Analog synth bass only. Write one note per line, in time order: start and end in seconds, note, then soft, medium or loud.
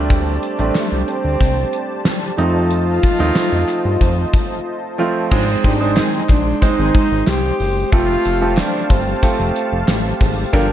0.00 0.39 D2 loud
0.59 0.71 A1 medium
0.92 1.04 C2 loud
1.25 1.37 D2 medium
1.41 1.65 C2 loud
2.38 3.00 F2 loud
3.20 3.32 D#2 medium
3.52 3.65 F2 medium
3.85 3.97 G2 medium
4.01 4.26 F2 loud
5.32 5.56 G#1 loud
5.65 6.01 G#1 medium
6.29 6.54 A#1 medium
6.79 6.91 G#1 medium
7.12 7.24 G#1 medium
7.28 7.52 C2 loud
7.60 7.85 F#1 medium
7.93 8.17 F1 loud
8.26 8.62 F1 loud
8.90 9.15 G1 medium
9.40 9.52 F1 medium
9.72 9.84 F1 medium
9.89 10.13 A1 loud
10.21 10.45 G#1 medium
10.53 10.72 G1 loud